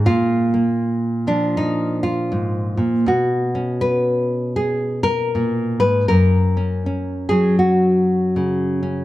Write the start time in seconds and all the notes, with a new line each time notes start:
0.06 A#2 F4
0.54 A#3
1.27 F3 D4
1.57 D#4
2.03 F4
2.32 G#2
2.77 A#2
3.06 B2 F#4
3.55 C#4
3.81 B4
4.56 G#4
5.03 A#4
5.35 A#2
5.80 G#2 B4
6.08 F#2 A#4
6.57 C#4
6.86 C#4
7.29 F#3 G#4
7.59 F#4
8.36 C#3
8.83 C#4